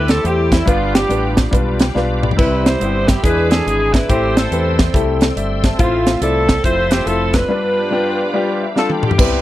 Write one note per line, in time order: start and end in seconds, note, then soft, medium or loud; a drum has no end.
0.00 0.18 D2 medium
0.00 3.20 G3 medium
0.00 0.11 A3 medium
0.00 0.63 A3 medium
0.00 0.21 C4 medium
0.00 0.64 C4 medium
0.00 0.11 E4 medium
0.00 0.52 E4 medium
0.00 0.65 E4 medium
0.00 0.11 G4 medium
0.00 0.25 G4 medium
0.00 0.64 A4 medium
0.00 0.12 B4 medium
0.00 0.12 C5 medium
0.00 0.65 E5 medium
0.00 0.65 G5 medium
0.00 0.64 C6 medium
0.08 0.25 A4 medium
0.08 snare loud
0.08 closed hi-hat medium
0.23 0.61 E2 medium
0.23 0.54 A3 medium
0.23 0.54 E4 medium
0.23 0.54 G4 medium
0.23 0.53 G4 medium
0.23 0.54 G4 medium
0.23 0.54 C5 medium
0.23 closed hi-hat medium
0.52 0.67 E4 medium
0.52 0.68 E4 medium
0.52 kick medium
0.52 snare medium
0.52 closed hi-hat medium
0.66 1.04 G1 medium
0.66 1.33 G2 medium
0.66 0.96 G3 medium
0.66 0.95 B3 medium
0.66 2.36 D4 medium
0.66 0.96 D4 medium
0.66 0.95 D4 medium
0.66 2.36 F4 medium
0.66 0.97 F4 medium
0.66 0.93 F4 medium
0.66 0.95 F4 medium
0.66 2.37 G4 medium
0.66 0.97 B4 loud
0.66 2.37 F5 medium
0.66 4.06 B5 medium
0.66 2.37 D6 medium
0.66 kick loud
0.66 closed hi-hat medium
0.95 1.77 B3 medium
0.95 1.77 D4 medium
0.95 1.35 G4 medium
0.95 1.38 G4 medium
0.95 snare loud
0.95 closed hi-hat medium
1.09 1.46 A1 medium
1.09 1.39 G3 medium
1.09 1.39 D4 medium
1.09 1.40 F4 medium
1.09 1.40 B4 medium
1.09 closed hi-hat medium
1.37 kick medium
1.37 snare loud
1.37 closed hi-hat medium
1.51 1.89 B1 medium
1.51 1.82 G3 medium
1.51 1.82 D4 medium
1.51 1.82 F4 medium
1.51 1.83 B4 medium
1.51 kick loud
1.51 closed hi-hat medium
1.79 1.94 G5 medium
1.79 snare loud
1.79 closed hi-hat medium
1.95 2.32 B1 medium
1.95 2.25 G3 medium
1.95 2.25 D4 medium
1.95 2.25 F4 medium
1.95 2.26 B4 medium
1.95 2.21 F5 medium
1.95 snare soft
2.22 2.37 D5 medium
2.22 mid tom medium
2.31 floor tom medium
2.37 2.75 C2 medium
2.37 3.04 C3 medium
2.37 3.24 C3 medium
2.37 2.67 G3 medium
2.37 3.20 G3 medium
2.37 2.67 C4 medium
2.37 3.20 C4 medium
2.37 2.78 E4 medium
2.37 2.68 E4 medium
2.37 3.23 G4 medium
2.37 2.68 B4 medium
2.37 2.66 B4 medium
2.37 4.08 E5 medium
2.37 3.24 C6 medium
2.37 kick loud
2.37 splash medium
2.65 3.10 C5 loud
2.65 snare medium
2.65 closed hi-hat medium
2.80 3.17 G1 medium
2.80 3.10 G3 medium
2.80 3.21 B3 medium
2.80 3.10 C4 medium
2.80 3.11 E4 medium
2.80 3.21 E4 medium
2.80 3.24 G4 medium
2.80 3.11 C5 medium
2.80 closed hi-hat medium
3.08 3.25 G4 medium
3.08 kick medium
3.08 snare loud
3.08 closed hi-hat medium
3.23 3.60 E2 medium
3.23 3.90 E3 medium
3.23 3.53 G#3 medium
3.23 4.08 G#3 medium
3.23 3.53 D4 medium
3.23 4.08 D4 medium
3.23 4.06 D4 medium
3.23 3.53 E4 medium
3.23 3.51 G#4 medium
3.23 4.09 G#4 medium
3.23 3.66 G#4 medium
3.23 3.51 B4 loud
3.23 3.54 B4 medium
3.23 4.09 D6 medium
3.23 kick loud
3.23 closed hi-hat medium
3.51 3.96 G#4 medium
3.51 3.65 A4 medium
3.51 snare loud
3.51 closed hi-hat medium
3.66 4.03 G#1 medium
3.66 3.96 G#3 medium
3.66 3.96 D4 medium
3.66 3.96 E4 medium
3.66 3.94 G#4 medium
3.66 3.97 G#4 medium
3.66 closed hi-hat medium
3.93 4.09 E4 medium
3.93 4.11 B4 medium
3.93 kick medium
3.93 snare medium
3.93 closed hi-hat medium
4.08 4.46 A1 medium
4.08 4.75 A2 medium
4.08 5.78 G3 medium
4.08 4.38 A3 medium
4.08 5.77 A3 medium
4.08 7.46 C4 medium
4.08 4.35 C4 medium
4.08 4.38 E4 medium
4.08 4.36 E4 medium
4.08 4.39 G4 medium
4.08 4.37 G4 medium
4.08 7.47 A4 medium
4.08 4.95 C5 medium
4.08 4.39 C5 medium
4.08 5.78 G5 medium
4.08 7.46 C6 medium
4.08 7.46 E6 medium
4.08 kick loud
4.08 closed hi-hat medium
4.36 5.18 C4 medium
4.36 5.18 E4 medium
4.36 4.79 A4 medium
4.36 snare loud
4.36 closed hi-hat medium
4.51 4.88 E2 medium
4.51 4.81 A3 medium
4.51 4.81 E4 medium
4.51 4.82 G4 medium
4.51 4.82 B4 medium
4.51 closed hi-hat medium
4.79 kick medium
4.79 snare loud
4.79 closed hi-hat medium
4.93 5.30 C2 medium
4.93 5.23 A3 medium
4.93 5.23 E4 medium
4.93 5.24 G4 medium
4.93 5.24 A4 medium
4.93 kick loud
4.93 closed hi-hat medium
5.21 snare loud
5.21 closed hi-hat medium
5.36 5.73 G1 medium
5.36 5.63 D5 medium
5.36 5.62 E5 medium
5.36 closed hi-hat medium
5.64 6.05 E5 medium
5.64 5.79 A5 medium
5.64 kick medium
5.64 snare medium
5.64 closed hi-hat medium
5.78 6.15 A1 loud
5.78 6.45 A2 medium
5.78 7.47 F3 medium
5.78 7.47 A3 medium
5.78 6.09 A3 medium
5.78 6.22 C4 medium
5.78 6.09 E4 medium
5.78 6.19 F4 medium
5.78 6.09 F4 medium
5.78 6.10 C5 loud
5.78 7.48 E5 medium
5.78 kick loud
5.78 closed hi-hat medium
6.07 snare loud
6.07 closed hi-hat medium
6.21 6.58 C2 medium
6.21 6.51 A3 medium
6.21 7.04 C4 medium
6.21 6.52 E4 medium
6.21 6.64 E4 medium
6.21 6.52 F4 medium
6.21 6.62 A4 medium
6.21 6.65 A4 medium
6.21 6.52 D5 medium
6.21 closed hi-hat medium
6.49 kick medium
6.49 snare loud
6.49 closed hi-hat medium
6.64 7.00 F1 medium
6.64 6.94 A3 medium
6.64 6.94 E4 medium
6.64 7.46 E4 medium
6.64 6.94 F4 medium
6.64 7.35 F4 medium
6.64 6.93 C5 loud
6.64 7.10 C5 loud
6.64 6.95 C5 medium
6.64 kick loud
6.64 closed hi-hat medium
6.91 7.07 G4 medium
6.91 snare loud
6.91 closed hi-hat medium
7.05 7.43 F1 medium
7.05 7.36 A3 medium
7.05 7.36 E4 medium
7.05 7.36 F4 medium
7.05 7.34 A4 loud
7.05 7.38 A4 medium
7.05 7.37 C5 medium
7.05 closed hi-hat medium
7.33 8.74 D4 medium
7.33 8.74 F4 medium
7.33 8.77 B4 medium
7.33 8.78 B4 medium
7.33 kick medium
7.33 snare loud
7.33 closed hi-hat medium
7.48 8.15 G2 medium
7.48 9.18 F3 medium
7.48 7.78 G3 medium
7.48 9.18 G3 medium
7.48 9.18 B3 medium
7.48 7.79 D4 medium
7.48 9.18 D4 medium
7.48 7.79 F4 medium
7.48 9.18 G4 medium
7.48 7.79 B4 loud
7.48 9.18 F5 medium
7.48 9.18 B5 medium
7.48 9.18 D6 medium
7.91 8.21 G3 medium
7.91 8.21 D4 medium
7.91 8.21 F4 medium
7.91 8.22 G4 medium
8.34 8.63 G3 medium
8.34 8.63 D4 medium
8.34 8.64 F4 medium
8.34 8.64 G4 medium
8.62 8.76 E5 medium
8.76 9.05 G3 medium
8.76 9.06 D4 medium
8.76 9.06 F4 medium
8.76 9.07 A4 medium
8.76 8.90 A4 medium
8.76 8.89 F5 medium
8.76 snare soft
8.90 9.18 G5 medium
8.90 high tom medium
9.03 9.41 B3 medium
9.03 9.41 E4 medium
9.03 9.41 G4 medium
9.03 mid tom medium
9.11 floor tom medium
9.18 9.41 C2 loud
9.18 9.41 C3 medium
9.18 9.41 G3 loud
9.18 9.41 B3 medium
9.18 9.41 C4 medium
9.18 9.41 E4 medium
9.18 9.41 G4 medium
9.18 9.41 B4 loud
9.18 9.41 E5 medium
9.18 9.41 B5 medium
9.18 9.41 C6 medium
9.18 kick loud
9.18 crash medium
9.18 tambourine medium